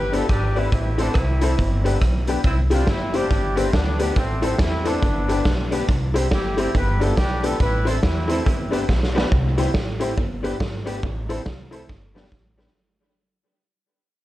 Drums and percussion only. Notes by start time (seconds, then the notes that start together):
0.13 closed hi-hat
0.29 kick, cross-stick, closed hi-hat
0.56 open hi-hat
0.72 kick, closed hi-hat
0.99 closed hi-hat
1.14 kick, cross-stick, closed hi-hat
1.41 closed hi-hat
1.59 kick, closed hi-hat
1.86 closed hi-hat
2.01 kick, cross-stick, closed hi-hat
2.27 closed hi-hat
2.44 kick, closed hi-hat
2.71 closed hi-hat
2.87 kick, snare, closed hi-hat
3.14 closed hi-hat
3.31 kick, closed hi-hat
3.57 closed hi-hat
3.73 kick, snare, closed hi-hat
3.99 closed hi-hat
4.16 kick, closed hi-hat
4.43 closed hi-hat
4.58 kick, snare, closed hi-hat
4.85 closed hi-hat
5.03 kick, closed hi-hat
5.29 closed hi-hat
5.45 kick, snare, closed hi-hat
5.72 closed hi-hat
5.89 kick, closed hi-hat
6.16 closed hi-hat
6.31 kick, snare, closed hi-hat
6.58 closed hi-hat
6.75 kick, closed hi-hat
7.01 closed hi-hat
7.17 kick, snare, closed hi-hat
7.44 closed hi-hat
7.60 kick, closed hi-hat
7.87 closed hi-hat
8.03 kick, snare, closed hi-hat
8.29 closed hi-hat
8.46 kick, closed hi-hat
8.73 closed hi-hat
8.89 kick, snare
9.03 snare
9.18 snare
9.32 kick
9.58 closed hi-hat
9.74 kick, snare
10.01 closed hi-hat
10.18 kick
10.44 closed hi-hat
10.60 kick, snare
10.87 closed hi-hat
11.03 kick
11.30 closed hi-hat
11.46 kick, snare
11.72 closed hi-hat
11.89 kick, snare
12.16 snare
12.24 snare
12.32 kick, snare
12.59 snare
12.66 snare